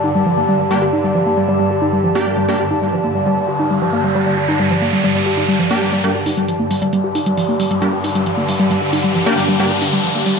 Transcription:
Already playing: synth drone G2 D3, ambient pad G4 D5 A5
0.04 synth arpeggio sound D#4
0.15 synth arpeggio sound G3
0.26 synth arpeggio sound F3
0.37 synth arpeggio sound A#3
0.49 synth arpeggio sound G3
0.60 synth arpeggio sound G3
0.71 synth arpeggio sound G3, synth stab A#3 D4 G4
0.82 synth arpeggio sound G4
0.93 synth arpeggio sound D#4
1.04 synth arpeggio sound G3
1.15 synth arpeggio sound F3
1.26 synth arpeggio sound A#3
1.37 synth arpeggio sound G3
1.49 synth arpeggio sound G3
1.60 synth arpeggio sound G3
1.71 synth arpeggio sound G4
1.82 synth arpeggio sound D#4
1.93 synth arpeggio sound G3
2.04 synth arpeggio sound F3
2.15 synth arpeggio sound A#3, synth stab A#3 D4 G4
2.26 synth arpeggio sound G3
2.37 synth arpeggio sound G3
2.48 synth arpeggio sound G3, synth stab A#3 D4 G4, riser
2.60 synth arpeggio sound G4
2.71 synth arpeggio sound D#4
2.82 synth arpeggio sound G3
2.93 synth arpeggio sound F3
3.04 synth arpeggio sound A#3
3.15 synth arpeggio sound G3
3.26 synth arpeggio sound G3
3.37 synth arpeggio sound G3
3.48 synth arpeggio sound G4
3.60 synth arpeggio sound D#4
3.71 synth arpeggio sound G3
3.82 synth arpeggio sound F3
3.93 synth arpeggio sound A#3
4.04 synth arpeggio sound G3
4.15 synth arpeggio sound G3
4.26 synth arpeggio sound G3
4.38 synth arpeggio sound G4
4.49 synth arpeggio sound D#4
4.60 synth arpeggio sound G3
4.71 synth arpeggio sound F3
4.82 synth arpeggio sound A#3
4.93 synth arpeggio sound G3
5.04 synth arpeggio sound G3
5.15 synth arpeggio sound G3
5.26 synth arpeggio sound G4
5.37 synth arpeggio sound D#4
5.49 synth arpeggio sound G3
5.60 synth arpeggio sound F3
5.71 synth stab A#3 D4 G4, synth arpeggio sound A#3
5.82 synth arpeggio sound G3
5.93 synth arpeggio sound G3
6.04 synth drone G2 D3, synth arpeggio sound G3, synth stab A#3 D4 G4, closed hi-hat, riser
6.15 synth arpeggio sound G4
6.26 synth arpeggio sound D#4, open hi-hat
6.37 synth arpeggio sound G3, closed hi-hat
6.48 synth arpeggio sound F3, closed hi-hat
6.60 synth arpeggio sound A#3
6.71 synth arpeggio sound G3, open hi-hat
6.82 synth arpeggio sound G3, closed hi-hat
6.93 synth arpeggio sound G3, closed hi-hat
7.04 synth arpeggio sound G4
7.15 synth arpeggio sound D#4, open hi-hat
7.26 synth arpeggio sound G3, closed hi-hat
7.37 synth arpeggio sound F3, open hi-hat
7.49 synth arpeggio sound A#3
7.60 synth arpeggio sound G3, open hi-hat
7.71 synth arpeggio sound G3, closed hi-hat
7.82 synth arpeggio sound G3, synth stab A#3 D4 G4, closed hi-hat
7.93 synth arpeggio sound G4
8.04 synth arpeggio sound D#4, open hi-hat
8.15 synth arpeggio sound G3, closed hi-hat
8.26 synth arpeggio sound F3, closed hi-hat
8.37 synth arpeggio sound A#3
8.48 synth arpeggio sound G3, open hi-hat
8.60 synth arpeggio sound G3, closed hi-hat
8.71 synth arpeggio sound G3, closed hi-hat
8.82 synth arpeggio sound G4
8.93 synth arpeggio sound D#4, open hi-hat
9.04 synth arpeggio sound G3, closed hi-hat
9.15 synth arpeggio sound F3, closed hi-hat
9.26 synth arpeggio sound A#3, synth stab A#3 D4 G4
9.37 synth arpeggio sound G3, open hi-hat
9.48 synth arpeggio sound G3, closed hi-hat
9.59 synth arpeggio sound G3, synth stab A#3 D4 G4, closed hi-hat
9.71 synth arpeggio sound G4
9.82 synth arpeggio sound D4, open hi-hat
9.93 synth arpeggio sound G3, closed hi-hat
10.04 synth arpeggio sound F3, closed hi-hat
10.15 synth arpeggio sound A#3
10.26 synth arpeggio sound G3, open hi-hat

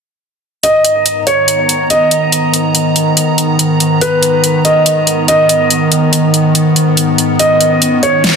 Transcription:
0.63 ambient pad G#2 D#3 B3 A#5, grand piano D#5, closed hi-hat
0.85 closed hi-hat
1.06 closed hi-hat
1.27 grand piano C#5, closed hi-hat
1.48 closed hi-hat
1.69 closed hi-hat
1.90 grand piano D#5, closed hi-hat
2.11 closed hi-hat
2.32 closed hi-hat
2.54 closed hi-hat
2.75 closed hi-hat
2.96 closed hi-hat
3.17 closed hi-hat
3.38 closed hi-hat
3.59 closed hi-hat
3.80 closed hi-hat
4.01 grand piano B4, closed hi-hat
4.23 closed hi-hat
4.44 closed hi-hat
4.65 grand piano D#5, closed hi-hat
4.86 closed hi-hat
5.07 closed hi-hat
5.28 grand piano D#5, closed hi-hat
5.49 closed hi-hat
5.70 closed hi-hat
5.92 closed hi-hat
6.13 closed hi-hat
6.34 closed hi-hat
6.55 closed hi-hat
6.76 closed hi-hat
6.97 closed hi-hat
7.18 closed hi-hat
7.39 ambient pad C#4, grand piano D#5, closed hi-hat
7.61 closed hi-hat
7.82 closed hi-hat
8.03 grand piano C#5, closed hi-hat
8.24 snare, closed hi-hat

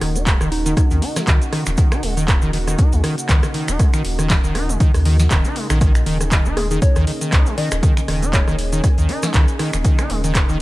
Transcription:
Already playing: analog synth pad C#3 A#3 D#4 F#4
0.01 sub bass D#1, acid bass D#3, cross-stick, open hi-hat
0.15 acid bass D#4, closed hi-hat, shaker
0.26 acid bass G#3, kick, clap, closed hi-hat, shaker
0.41 sub bass D#1, acid bass D#3, cross-stick, shaker
0.52 soft synth lead D#4, open hi-hat
0.66 acid bass D#3, closed hi-hat, shaker
0.77 acid bass D#3, kick, cross-stick, closed hi-hat, shaker
0.91 sub bass D#2, acid bass D#3, closed hi-hat, shaker
1.02 acid bass D#4, open hi-hat
1.16 acid bass G#3, cross-stick, snare, closed hi-hat, shaker
1.27 sub bass C#2, acid bass D#3, kick, clap, closed hi-hat, shaker
1.42 closed hi-hat, shaker
1.52 acid bass D#3, cross-stick, open hi-hat
1.66 sub bass D#1, acid bass D#3, finger snap, closed hi-hat, shaker
1.77 acid bass D#3, kick, closed hi-hat, shaker
1.92 acid bass D#4, finger snap, cross-stick, closed hi-hat, shaker
2.03 sub bass D#1, acid bass G#3, open hi-hat
2.17 acid bass D#3, closed hi-hat, shaker
2.28 kick, cross-stick, clap, closed hi-hat, shaker
2.42 sub bass D#1, acid bass D#3, shaker
2.53 acid bass D#3, open hi-hat
2.67 acid bass D#3, cross-stick, closed hi-hat, shaker
2.78 acid bass D#4, kick, closed hi-hat, shaker
2.92 sub bass D#2, acid bass G#3, closed hi-hat, shaker
3.04 acid bass D#3, cross-stick, open hi-hat
3.18 closed hi-hat, shaker
3.29 sub bass C#2, acid bass D#3, kick, clap, closed hi-hat, shaker
3.43 acid bass D#3, cross-stick, closed hi-hat, shaker
3.54 acid bass D#3, open hi-hat
3.68 sub bass D#1, acid bass D#4, finger snap, closed hi-hat, shaker
3.79 acid bass G#3, kick, cross-stick, closed hi-hat, shaker
3.93 acid bass D#3, finger snap, closed hi-hat, shaker
4.05 sub bass D#1, open hi-hat
4.19 acid bass D#3, cross-stick, closed hi-hat, shaker
4.30 acid bass D#3, kick, snare, clap, closed hi-hat, shaker
4.44 sub bass D#1, acid bass D#3, shaker
4.55 acid bass D#4, cross-stick, open hi-hat
4.69 acid bass G#3, closed hi-hat, shaker
4.80 acid bass D#3, kick, closed hi-hat, shaker
4.94 sub bass D#2, cross-stick, open hi-hat, shaker
5.05 acid bass D#3, open hi-hat
5.20 acid bass D#3, snare, closed hi-hat, shaker
5.31 sub bass D#1, acid bass D#3, kick, cross-stick, clap, closed hi-hat, shaker
5.45 acid bass D#4, closed hi-hat, shaker
5.56 acid bass G#3, open hi-hat
5.70 sub bass A#1, acid bass D#3, finger snap, cross-stick, closed hi-hat, shaker
5.81 acid bass D#3, analog synth pad G#4, kick, cross-stick, closed hi-hat, shaker
5.95 finger snap, closed hi-hat, shaker
6.06 sub bass D#1, acid bass D#3, open hi-hat
6.21 acid bass D#3, cross-stick, closed hi-hat, shaker
6.32 acid bass D#3, kick, clap, closed hi-hat, shaker
6.45 sub bass D#1, acid bass D#4, shaker
6.57 acid bass G#3, soft synth lead G#4, cross-stick, open hi-hat
6.71 acid bass D#3, soft synth lead G#4, closed hi-hat, shaker
6.82 soft synth lead C#5, kick, closed hi-hat, shaker
6.96 sub bass D#2, acid bass D#3, cross-stick, closed hi-hat, shaker
7.07 acid bass D#3, open hi-hat
7.21 acid bass D#3, closed hi-hat, shaker
7.32 sub bass C#2, acid bass D#4, kick, cross-stick, clap, closed hi-hat, shaker
7.46 acid bass G#3, closed hi-hat, shaker
7.58 acid bass D#3, soft synth lead D#5, open hi-hat
7.71 sub bass D#1, finger snap, cross-stick, closed hi-hat, shaker
7.83 acid bass D#3, kick, closed hi-hat, shaker
7.97 acid bass D#3, finger snap, closed hi-hat, shaker
8.08 sub bass D#1, acid bass D#3, cross-stick, open hi-hat
8.22 acid bass D#4, closed hi-hat, shaker
8.33 acid bass G#3, soft synth lead C#5, kick, clap, closed hi-hat, shaker
8.47 sub bass D#1, acid bass D#3, cross-stick, shaker
8.59 open hi-hat
8.73 acid bass D#3, closed hi-hat, shaker
8.84 kick, cross-stick, closed hi-hat, shaker
8.98 sub bass D#2, acid bass D#3, closed hi-hat, shaker
9.09 acid bass D#4, open hi-hat
9.23 acid bass G#3, cross-stick, snare, closed hi-hat, shaker
9.34 sub bass C#2, acid bass D#3, kick, clap, closed hi-hat, shaker
9.48 closed hi-hat, shaker
9.59 acid bass D#3, cross-stick, open hi-hat
9.73 sub bass D#1, acid bass D#3, finger snap, closed hi-hat, shaker
9.85 acid bass D#3, kick, closed hi-hat, shaker
9.99 acid bass D#4, finger snap, cross-stick, closed hi-hat, shaker
10.10 sub bass D#1, acid bass G#3, open hi-hat
10.24 acid bass D#3, closed hi-hat, shaker
10.35 kick, cross-stick, clap, closed hi-hat, shaker
10.49 sub bass D#1, acid bass D#3, shaker

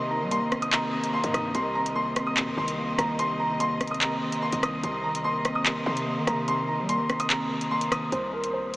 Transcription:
Already playing: 808-style bass C3, tine electric piano C3 D#3 A#3 C4, string section C3 C4 A#4 D#5
0.11 tine electric piano D#3, grand piano A#5
0.21 808-style bass G3
0.31 tine electric piano A#3, grand piano C6, closed hi-hat
0.52 tine electric piano C4, cross-stick, closed hi-hat
0.62 grand piano D#6, closed hi-hat
0.72 tine electric piano C3, grand piano A#5, clap, closed hi-hat
0.93 tine electric piano D#3
1.04 closed hi-hat
1.13 tine electric piano A#3, grand piano C6
1.24 808-style bass G2, closed hi-hat
1.34 808-style bass G2, tine electric piano D#3, grand piano D#6, cross-stick, closed hi-hat
1.55 808-style bass C2, tine electric piano C3, string section C3 C4 D#5, grand piano C6, closed hi-hat
1.75 tine electric piano D#3, grand piano A#5
1.86 closed hi-hat
1.96 tine electric piano A#3, grand piano C6
2.16 tine electric piano C4, cross-stick, closed hi-hat
2.27 grand piano D#6
2.37 tine electric piano C3, 808-style bass C3, clap, closed hi-hat
2.47 808-style bass C2
2.57 808-style bass C2, tine electric piano D#3, grand piano C6
2.68 closed hi-hat
2.78 tine electric piano A#3
2.98 808-style bass C2, tine electric piano D#3, grand piano A#5, cross-stick, closed hi-hat
3.19 tine electric piano C3, grand piano C6, closed hi-hat
3.40 tine electric piano D#3, grand piano A#5
3.60 tine electric piano A#3, grand piano C6, closed hi-hat
3.81 tine electric piano C4, cross-stick, closed hi-hat
3.87 808-style bass C#2, grand piano D#6, closed hi-hat
3.94 closed hi-hat
4.01 tine electric piano C3, grand piano A#5, clap, closed hi-hat
4.06 808-style bass C2
4.22 tine electric piano D#3
4.32 closed hi-hat
4.42 tine electric piano A#3, grand piano C6
4.52 808-style bass C2, closed hi-hat
4.63 tine electric piano D#3, grand piano D#6, cross-stick, closed hi-hat
4.83 808-style bass C2, tine electric piano C3, string section A#4, grand piano C6, closed hi-hat
5.04 tine electric piano D#3, grand piano A#5
5.15 closed hi-hat
5.24 tine electric piano A#3, grand piano C6
5.45 tine electric piano C4, cross-stick, closed hi-hat
5.55 grand piano D#6
5.66 tine electric piano C3, clap, closed hi-hat
5.86 808-style bass C3, tine electric piano D#3, grand piano C6
5.97 closed hi-hat
6.06 tine electric piano A#3
6.17 808-style bass D#3
6.27 808-style bass C3, tine electric piano D#3, grand piano A#5, cross-stick, closed hi-hat
6.48 tine electric piano C3, grand piano C6, closed hi-hat
6.68 tine electric piano D#3, grand piano A#5
6.79 808-style bass G3
6.89 tine electric piano A#3, grand piano C6, closed hi-hat
7.09 tine electric piano C4, cross-stick, closed hi-hat
7.20 grand piano D#6, closed hi-hat
7.30 tine electric piano C3, grand piano A#5, clap, closed hi-hat
7.50 tine electric piano D#3
7.61 closed hi-hat
7.71 tine electric piano A#3, grand piano C6
7.81 closed hi-hat
7.92 tine electric piano D#3, grand piano D#6, cross-stick, closed hi-hat
8.12 808-style bass C2, grand piano C5, closed hi-hat
8.33 grand piano A#4
8.44 closed hi-hat
8.53 grand piano C5

